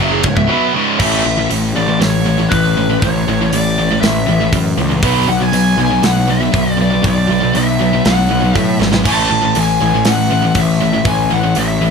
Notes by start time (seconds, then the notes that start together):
Already playing: E5
0.00 F#1 F#2 C#3 F#3
0.11 G#4
0.22 C#1 C#2 G#2 C#5, kick, ride
0.36 C#1 C#2 G#2 E5, kick
0.49 B2 F#3 B3 E5
0.75 C#2 G#2 C#3
0.99 A1 A2 E3 A3 E5, kick, crash
1.25 A1 A2 E3
1.38 A2 E3
1.50 A1 A2 E3, open hi-hat
1.75 A1 A2 E3 D5
1.88 A2 E3
2.00 A1 A2 E3 C#5, snare, open hi-hat
2.25 A2 E3
2.38 A2 E3
2.49 A1 A2 E3 B4, kick, open hi-hat
2.77 A2 E3
2.89 A2 E3
3.00 A1 A2 E3 C#5, kick, open hi-hat
3.27 A1 A2 E3
3.41 A2 E3
3.50 A1 A2 E3 D5, open hi-hat
3.78 A2 E3
3.91 A2 E3
4.01 A1 A2 E3 E5, snare, open hi-hat
4.27 A1 A2 E3
4.41 A2 E3
4.52 F#2 A2 E3, kick, open hi-hat
4.78 C#2 A2 E3
4.91 A2 E3
5.03 B1 B2 F#3 B3, kick, open hi-hat
5.28 B1 B2 F#3 F#5
5.41 B2 F#3 G#5
5.53 B1 B2 F#3, open hi-hat
5.77 B1 B2 F#3
5.82 G#5
5.91 B2 F#3
6.02 B1 B2 F#3 F#5, snare, open hi-hat
6.30 B2 F#3 E5
6.41 B2 F#3
6.54 B1 B2 F#3, kick, open hi-hat
6.77 B2 D5
6.81 B2 F#3
6.90 B2 F#3
6.94 B2
7.02 B1 B2 F#3 D5, kick, open hi-hat
7.07 B2 F#3
7.28 B1 B2 F#3
7.32 B2
7.43 B2 F#3
7.55 B1 B2 F#3 E5, open hi-hat
7.81 B2 F#3
7.94 B2 F#3
8.05 B1 B2 F#3 F#5, snare, open hi-hat
8.30 B1 B2 F#3
8.44 B2 F#3
8.55 A2 B2 F#3 E5, kick, open hi-hat
8.80 G#1 B2 F#3, snare
8.93 B2 F#3, snare
9.05 A1 A2 E3 A3 A5, kick, crash, splash
9.31 A1 A2 E3
9.43 A2 E3
9.55 A1 A2 E3 G#5, open hi-hat
9.81 A1 A2 E3
9.94 A2 E3
10.05 A1 A2 E3 F#5, snare, open hi-hat
10.31 A2 E3
10.44 A2 E3
10.55 A1 A2 E3 E5, kick, open hi-hat
10.80 A2 E3
10.93 A2 E3
11.05 A1 A2 E3 G#5, kick, open hi-hat
11.30 A1 A2 E3 F#5
11.43 A2 E3
11.55 A1 A2 E3 E5, open hi-hat
11.81 A2 E3